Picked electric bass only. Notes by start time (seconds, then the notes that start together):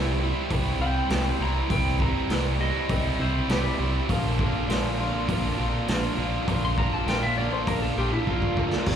Already playing: C2
0.51 C2
0.80 C2
1.10 C2
1.40 C2
1.70 C2
2.29 C2
2.89 C2
3.19 C2
3.49 C2
3.79 C2
4.09 A#1
4.69 A#1
5.28 A#1
5.59 A#1
5.88 A#1
6.17 A#1
6.48 A#1
7.07 A#1
7.67 A#1
7.97 A#1
8.27 A#1
8.57 D2
8.87 C2